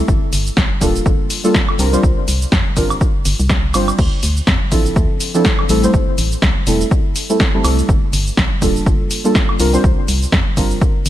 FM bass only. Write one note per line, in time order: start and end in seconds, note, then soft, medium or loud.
0.08 0.18 G1 loud
0.33 0.50 G1 medium
0.57 0.67 A#1 medium
0.81 0.99 D1 loud
1.06 1.15 G1 medium
1.79 1.97 C2 medium
2.03 2.13 C2 loud
2.28 2.46 C2 medium
2.52 2.62 F2 medium
2.77 2.94 G1 loud
3.26 3.35 G1 medium
3.40 3.76 C2 loud
3.74 3.92 G1 medium
3.99 4.08 D2 loud
4.23 4.41 D2 medium
4.47 4.57 F2 medium
4.72 4.89 A1 loud
4.96 5.06 D2 loud
5.69 5.87 A1 medium
5.94 6.03 A1 loud
6.18 6.36 A1 medium
6.43 6.52 C2 medium
6.67 6.85 E1 loud
7.64 7.82 C2 loud
7.89 7.98 G1 loud
8.13 8.31 G1 medium
8.38 8.47 A#1 medium
8.62 8.80 D1 loud
8.86 8.96 G1 loud
9.60 9.77 C2 medium
9.84 9.93 C2 loud
10.08 10.26 C2 medium
10.33 10.42 F2 medium
10.57 10.75 G1 loud
11.06 11.09 G1 loud